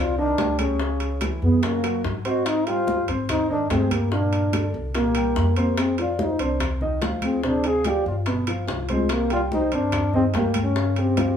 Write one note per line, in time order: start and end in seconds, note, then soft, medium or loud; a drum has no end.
0.00 0.35 C2 medium
0.00 0.10 C4 medium
0.00 0.18 F4 medium
0.00 0.11 C5 medium
0.00 0.17 D5 medium
0.00 0.11 C6 medium
0.18 0.35 D#3 medium
0.18 0.62 D4 medium
0.18 0.35 D#4 medium
0.18 0.61 A#4 medium
0.18 0.35 D#5 medium
0.18 high conga soft
0.38 1.36 C#2 medium
0.38 0.73 G3 medium
0.38 0.73 G4 medium
0.38 0.73 G5 medium
0.38 high bongo medium
0.38 low bongo medium
0.38 high conga medium
0.38 high timbale medium
0.38 low timbale medium
0.59 1.22 C#4 medium
0.59 1.22 G#4 medium
0.59 high conga medium
0.59 high timbale medium
0.59 claves medium
0.80 1.14 C#3 medium
0.80 1.15 C#4 medium
0.80 1.15 C#5 medium
0.80 high bongo medium
0.80 high conga soft
1.00 high bongo soft
1.00 high conga soft
1.00 high timbale medium
1.21 1.56 E3 medium
1.21 1.56 E4 medium
1.21 1.56 E5 medium
1.21 high bongo medium
1.21 high conga medium
1.21 high timbale medium
1.21 claves medium
1.42 2.00 F#2 medium
1.42 1.65 B3 medium
1.42 1.64 G#4 medium
1.42 high bongo soft
1.42 high conga soft
1.63 1.80 C#3 medium
1.63 2.05 A#3 medium
1.63 1.80 C#4 medium
1.63 2.04 F#4 medium
1.63 1.80 C#5 medium
1.63 high bongo medium
1.63 high conga soft
1.63 high timbale medium
1.84 2.18 F#3 medium
1.84 2.18 F#4 medium
1.84 2.18 F#5 medium
1.84 high conga soft
1.84 high timbale medium
1.84 claves medium
2.04 3.02 G#2 medium
2.04 high bongo medium
2.04 low bongo medium
2.04 high conga soft
2.25 2.59 C4 medium
2.25 2.48 F#4 medium
2.25 2.59 C5 medium
2.25 2.31 E5 medium
2.25 2.59 C6 medium
2.25 high bongo soft
2.25 high timbale medium
2.30 2.47 D#5 medium
2.45 2.68 D#4 loud
2.45 2.67 C5 medium
2.45 high bongo medium
2.45 high conga soft
2.45 high timbale medium
2.45 claves medium
2.67 3.01 G3 medium
2.67 3.08 F4 loud
2.67 3.01 G4 medium
2.67 3.08 C5 medium
2.67 3.01 G5 medium
2.67 high conga soft
2.67 high timbale medium
2.87 high bongo medium
2.87 high conga medium
3.08 3.67 G#2 medium
3.08 3.42 C4 medium
3.08 3.42 C5 medium
3.08 3.43 C6 medium
3.08 high conga soft
3.08 high timbale medium
3.28 3.49 D#4 medium
3.28 3.48 C5 medium
3.28 high bongo medium
3.28 high conga soft
3.28 low conga medium
3.28 high timbale medium
3.28 claves medium
3.49 3.67 D#3 medium
3.49 3.70 D4 medium
3.49 3.67 D#4 medium
3.49 3.69 A#4 medium
3.49 3.67 D#5 medium
3.49 high conga soft
3.70 4.68 G2 medium
3.70 4.04 G3 medium
3.70 3.94 C4 medium
3.70 4.05 G4 medium
3.70 3.75 A4 medium
3.70 4.05 G5 medium
3.70 high bongo medium
3.70 low bongo medium
3.70 high conga medium
3.70 high timbale medium
3.70 low timbale medium
3.74 3.93 G#4 medium
3.91 4.12 A#3 medium
3.91 4.12 G4 medium
3.91 high conga medium
3.91 high timbale medium
3.91 claves medium
4.11 4.46 A#2 medium
4.11 4.46 A#3 medium
4.11 4.71 D4 medium
4.11 4.46 A#4 medium
4.11 4.70 A#4 medium
4.11 high bongo medium
4.33 high bongo soft
4.33 high conga soft
4.33 high timbale medium
4.53 4.87 D3 medium
4.53 4.88 D4 medium
4.53 4.88 D5 medium
4.53 high bongo medium
4.53 high conga medium
4.53 high timbale medium
4.53 claves medium
4.74 5.32 C2 medium
4.74 high bongo soft
4.74 high conga soft
4.95 5.12 A#2 medium
4.95 5.12 A#3 medium
4.95 5.53 A#3 medium
4.95 5.53 G4 medium
4.95 5.12 A#4 medium
4.95 high bongo medium
4.95 high conga soft
4.95 high timbale medium
5.15 5.50 G3 medium
5.15 5.50 G4 medium
5.15 5.50 G5 medium
5.15 high timbale medium
5.15 claves medium
5.36 6.34 F2 medium
5.36 high bongo medium
5.36 low bongo medium
5.36 high conga soft
5.56 5.80 A#3 medium
5.56 5.91 C4 medium
5.56 5.80 G4 medium
5.56 5.91 C5 medium
5.56 5.91 C6 medium
5.56 high bongo soft
5.56 high timbale medium
5.77 5.99 C4 medium
5.77 5.99 G#4 medium
5.77 high bongo medium
5.77 high conga soft
5.77 high timbale medium
5.77 claves medium
5.98 6.33 F3 medium
5.98 6.33 F4 medium
5.98 6.22 F4 medium
5.98 6.22 D5 medium
5.98 6.33 F5 medium
5.98 high conga soft
5.98 high timbale medium
6.19 6.43 D#4 medium
6.19 6.26 C#5 medium
6.19 high bongo medium
6.19 high conga loud
6.25 6.43 C5 medium
6.39 6.98 C2 medium
6.39 6.74 C4 medium
6.39 6.61 D4 medium
6.39 6.61 A#4 medium
6.39 6.74 C5 medium
6.39 6.74 C6 medium
6.39 high conga soft
6.39 high timbale medium
6.60 high bongo medium
6.60 high conga soft
6.60 low conga medium
6.60 high timbale medium
6.60 claves medium
6.81 6.98 D#3 medium
6.81 6.99 D#4 medium
6.81 6.99 D#5 medium
6.81 high conga soft
6.81 low conga medium
7.01 8.00 D2 medium
7.01 7.36 F3 medium
7.01 7.36 F4 medium
7.01 7.36 F5 medium
7.01 high bongo medium
7.01 low bongo medium
7.01 high conga medium
7.01 high timbale medium
7.22 7.47 C4 medium
7.22 7.44 G#4 medium
7.22 high conga medium
7.22 high timbale medium
7.22 claves medium
7.43 7.78 C3 medium
7.43 7.78 C4 medium
7.43 7.68 D4 medium
7.43 7.67 G#4 medium
7.43 7.78 C5 medium
7.43 high bongo medium
7.64 7.89 G#4 loud
7.64 7.88 F5 medium
7.64 high bongo soft
7.64 high conga soft
7.64 high timbale medium
7.84 8.19 F3 medium
7.84 8.20 F4 medium
7.84 8.07 G4 medium
7.84 8.06 D5 medium
7.84 8.20 F5 medium
7.84 high bongo medium
7.84 high conga medium
7.84 high timbale medium
7.84 claves medium
8.06 8.64 G1 medium
8.06 8.17 F4 medium
8.06 8.13 D5 medium
8.06 high bongo soft
8.06 high conga soft
8.26 8.44 B2 medium
8.26 8.44 B3 medium
8.26 8.44 B4 medium
8.26 high bongo medium
8.26 high conga soft
8.26 high timbale medium
8.47 8.82 F3 medium
8.47 8.82 F4 medium
8.47 8.82 F5 medium
8.47 high conga soft
8.47 high timbale medium
8.47 claves medium
8.68 9.66 C2 medium
8.68 high bongo medium
8.68 low bongo medium
8.68 high conga soft
8.68 low timbale medium
8.89 9.14 G#3 medium
8.89 9.23 C4 medium
8.89 9.12 F4 medium
8.89 9.23 C5 medium
8.89 9.24 C6 medium
8.89 high bongo soft
8.89 high conga medium
8.89 high timbale medium
9.09 9.32 A#3 medium
9.09 9.31 G4 medium
9.09 high bongo medium
9.09 high conga soft
9.09 high timbale medium
9.09 claves medium
9.30 9.65 G3 medium
9.30 9.42 F4 loud
9.30 9.65 G4 medium
9.30 9.38 D5 medium
9.30 9.65 G5 medium
9.30 high conga soft
9.30 high timbale medium
9.52 9.75 D#4 medium
9.52 9.74 C5 medium
9.52 high bongo medium
9.52 high conga medium
9.72 10.30 G2 medium
9.72 10.06 C4 medium
9.72 10.14 D4 medium
9.72 10.14 A#4 medium
9.72 10.06 C5 medium
9.72 10.07 C6 medium
9.72 high conga soft
9.72 high timbale medium
9.92 high bongo medium
9.92 high conga soft
9.92 low conga medium
9.92 high timbale medium
9.92 claves medium
10.14 10.31 D#3 medium
10.14 10.24 C4 medium
10.14 10.31 D#4 medium
10.14 10.21 G#4 medium
10.14 10.31 D#5 medium
10.14 high conga soft
10.14 low conga medium
10.34 11.32 G2 medium
10.34 10.68 G3 medium
10.34 10.61 A#3 medium
10.34 10.69 G4 medium
10.34 10.60 G4 medium
10.34 10.69 G5 medium
10.34 high bongo medium
10.34 low bongo medium
10.34 high conga medium
10.34 high timbale medium
10.34 low timbale medium
10.54 high conga medium
10.54 high timbale medium
10.54 claves medium
10.63 11.00 C#4 medium
10.63 10.99 A#4 medium
10.76 11.10 C#3 medium
10.76 11.10 C#4 medium
10.76 11.11 C#5 medium
10.76 high bongo medium
10.76 high conga soft
10.96 11.37 C4 medium
10.96 11.37 G4 medium
10.96 high bongo soft
10.96 high conga soft
10.96 high timbale medium
11.17 11.37 F3 medium
11.17 11.37 F4 medium
11.17 11.37 F5 medium
11.17 high bongo medium
11.17 high conga loud
11.17 high timbale medium
11.17 claves medium